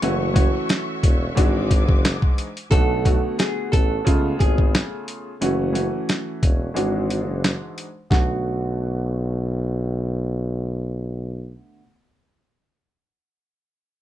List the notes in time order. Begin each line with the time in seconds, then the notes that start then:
Already playing: C#6
0.02 F#1 E3 A3 C#4 F#4 E5, closed hi-hat
0.34 E3 A3 C#4 F#4, kick, closed hi-hat
0.69 snare, closed hi-hat
1.03 E1, kick, closed hi-hat
1.35 G#1 G#2 E3 G#3 D4 F#4 G#5 D6, kick, closed hi-hat
1.71 kick, closed hi-hat
1.89 F#1, kick
2.05 snare, closed hi-hat
2.22 kick
2.38 closed hi-hat
2.57 closed hi-hat
2.71 B1 D3 A3 B3 F#4 A4, kick, closed hi-hat
3.05 D3 A3 B3 F#4, kick, closed hi-hat
3.39 G#4, snare, closed hi-hat
3.72 A1 A4, kick, closed hi-hat
4.05 C#2 C#3 A3 B3 F4, kick, closed hi-hat
4.39 G#1 G#4, kick, closed hi-hat
4.58 kick
4.75 snare, closed hi-hat
5.08 closed hi-hat
5.41 F#1 E3 A3 C#4 F#4, closed hi-hat
5.73 E3 A3 C#4 F#4, closed hi-hat
6.09 snare, closed hi-hat
6.43 E1, kick, closed hi-hat
6.74 G#1 G#2 E3 G#3 D4 F#4, closed hi-hat
7.10 closed hi-hat
7.28 F#1
7.44 snare, closed hi-hat
7.78 closed hi-hat
8.10 B1 D3 A3 B3 F#4, kick, snare